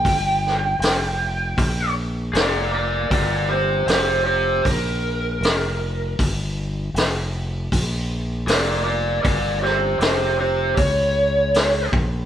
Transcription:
<<
  \new Staff \with { instrumentName = "Electric slide guitar" } { \time 4/4 \key f \mixolydian \tempo 4 = 78 g''2~ g''8 r8 <bes' d''>8 <bes' d''>8 | <bes' d''>8 <g' c''>8 <g' c''>8 <g' c''>8 bes'2 | r2. <bes' d''>8 <bes' d''>8 | <bes' d''>8 <g' c''>8 <g' c''>8 <g' c''>8 cis''4. r8 | }
  \new Staff \with { instrumentName = "Fingered electric bass" } { \clef bass \time 4/4 \key f \mixolydian g,,4 f,,4 bes,,4 f,,4 | g,,4 f,,4 bes,,4 f,,4 | g,,4 f,,4 bes,,4 f,,4 | g,,4 f,,4 cis,4. bes,,8 | }
  \new DrumStaff \with { instrumentName = "Drums" } \drummode { \time 4/4 <hho bd>8 sn8 <hho sn>4 <hho bd>4 <hho sn>4 | <hho bd>4 <hho sn>4 <hho bd>4 <hho sn>4 | <hho bd>4 <hho sn>4 <hho bd>4 <hho sn>4 | <hho bd>8 sn8 <hho sn>4 <hho bd>4 <hho sn>8 bd8 | }
>>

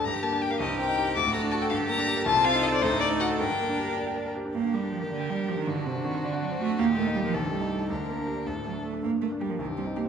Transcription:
<<
  \new Staff \with { instrumentName = "Violin" } { \time 6/8 \key g \minor \tempo 4. = 107 bes''8 a''8 g''16 f''16 ees''8 g''4 | d'''8 bes''8 a''16 g''16 f''8 bes''4 | a''8 f''8 ees''16 d''16 c''8 d''8 fis''8 | g''4. r4. |
r4. bes'4. | d'4. d'4. | ees'4. g'4. | d'2~ d'16 r8. |
r4. g'4. | }
  \new Staff \with { instrumentName = "Violin" } { \time 6/8 \key g \minor g'4. g'4. | fis'4. g'4. | f'4. ees'4. | d'2~ d'8 r8 |
g'2. | fis'2. | g'4. a'4. | bes'4. a'4 r8 |
r4 g'8 r4 g'8 | }
  \new Staff \with { instrumentName = "Grand piano" } { \time 6/8 \key g \minor g,16 d16 bes16 d'16 g'16 bes'16 c,16 g,16 c'16 ees'16 g'16 c''16 | d,16 a,16 a16 d'16 fis'16 a'16 g,16 d16 bes16 d'16 g'16 bes'16 | c,16 c16 c'16 ees'16 a'16 c''16 d,16 a,16 a16 ees'16 fis'16 a'16 | g,16 d16 bes16 d'16 g'16 bes'16 d''16 g''16 d''16 bes'16 g'16 d'16 |
g,16 d16 bes16 d'16 g'16 bes'16 d''16 g''16 d''16 bes'16 g'16 d'16 | g,16 d16 c'16 d'16 fis'16 c''16 d''16 fis''16 d''16 c''16 fis'16 d'16 | ees,16 bes,16 bes16 ees'16 g'16 bes'16 c,16 g,16 a16 ees'16 a'16 ees'16 | d,16 d16 bes16 d'16 g'16 bes'16 d,16 a,16 a16 d'16 a'16 d'16 |
g,16 d16 bes16 d'16 g'16 bes'16 c,16 g,16 c'16 ees'16 g'16 c''16 | }
  \new Staff \with { instrumentName = "Cello" } { \clef bass \time 6/8 \key g \minor g'4. bes'4. | a'2. | a'4. a'4. | bes'2~ bes'16 r8. |
bes8 g8 f16 ees16 d8 g8 f16 ees16 | d8 c8 ees8 d8 fis8 a8 | bes8 a8 g16 f16 ees8 g4 | d4. r8 fis8 a8 |
bes8 a8 g16 f16 ees8 g8 bes8 | }
>>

